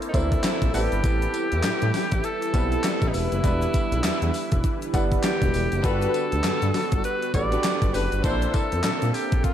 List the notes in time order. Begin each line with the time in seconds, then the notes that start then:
Already playing: D3 E3 A#3 C4 D4 E4 A4
0.02 closed hi-hat, shaker
0.08 D#4
0.13 D2 E3 A#3 C4 D4 E4 C5, kick, closed hi-hat, tambourine
0.32 kick, closed hi-hat, shaker
0.44 snare, clap, closed hi-hat, tambourine, shaker
0.62 A#1, kick, closed hi-hat, shaker
0.73 A1 E3 G3 B3 C4 E4 G4 A4 B4, open hi-hat, tambourine, shaker
0.92 G1, closed hi-hat, shaker
1.04 A1, kick, closed hi-hat, tambourine, shaker
1.22 closed hi-hat, shaker
1.34 closed hi-hat, tambourine
1.52 E2, closed hi-hat, shaker
1.63 A2, snare, clap, closed hi-hat, tambourine, shaker
1.81 A2, closed hi-hat, shaker
1.94 snare, open hi-hat, tambourine
2.12 A1, kick, closed hi-hat, shaker
2.24 A4, closed hi-hat, shaker
2.42 closed hi-hat, shaker
2.53 B1 G3 B3 C4 E4 A4, kick, closed hi-hat, tambourine
2.72 closed hi-hat, shaker
2.84 snare, clap, closed hi-hat, tambourine, shaker
3.02 A1, kick, closed hi-hat, shaker
3.08 D#4
3.14 E1 E4, open hi-hat, tambourine, shaker
3.32 F#1, closed hi-hat, shaker
3.43 E1 D3 E3 G3 B3 D4 E4 B4, kick, closed hi-hat, tambourine, shaker
3.62 closed hi-hat, shaker
3.74 kick, closed hi-hat, tambourine, shaker
3.92 B1, closed hi-hat, shaker
4.04 E2, snare, clap, closed hi-hat, tambourine, shaker
4.22 E2, closed hi-hat, shaker
4.34 open hi-hat, tambourine, shaker
4.52 E1, kick, closed hi-hat, shaker
4.64 kick, closed hi-hat, shaker
4.82 closed hi-hat, shaker
4.93 G1 G3 B3 D4 E4 F#5, kick, closed hi-hat, tambourine, shaker
5.12 kick, closed hi-hat, shaker
5.23 G4, snare, clap, closed hi-hat, tambourine, shaker
5.42 E1, kick, closed hi-hat, shaker
5.54 E1, open hi-hat, tambourine, shaker
5.72 F#1, closed hi-hat, shaker
5.83 G1 G3 B3 D4 F#4 G4 A4 B4, kick, closed hi-hat, tambourine, shaker
5.91 B4
6.02 closed hi-hat, shaker
6.14 closed hi-hat, tambourine
6.32 D2, closed hi-hat, shaker
6.44 G2, snare, clap, closed hi-hat, tambourine, shaker
6.62 G2, closed hi-hat, shaker
6.74 snare, open hi-hat, tambourine
6.92 G1, kick, closed hi-hat, shaker
7.04 B4, closed hi-hat, shaker
7.22 closed hi-hat, shaker
7.34 A1 G3 B3 D4 F#4 A4 D5, kick, closed hi-hat, tambourine
7.51 D4 F#4 G4 B4, closed hi-hat, shaker
7.64 snare, clap, closed hi-hat, tambourine, shaker
7.82 G1, kick, closed hi-hat, shaker
7.93 F#1 D4 F#4 G4 B4, open hi-hat, tambourine, shaker
8.12 G1, closed hi-hat, shaker
8.23 A#1 E3 A#3 C4 D4 E4 A4 C5 E5, kick, closed hi-hat, tambourine, shaker
8.42 closed hi-hat, shaker
8.54 A4, kick, closed hi-hat, tambourine
8.72 F2, closed hi-hat, shaker
8.84 A#2 A4, snare, clap, closed hi-hat, tambourine, shaker
9.02 A#2, closed hi-hat, shaker
9.14 G4, open hi-hat, tambourine
9.32 A#1, kick, closed hi-hat, shaker
9.44 F4, kick, closed hi-hat, shaker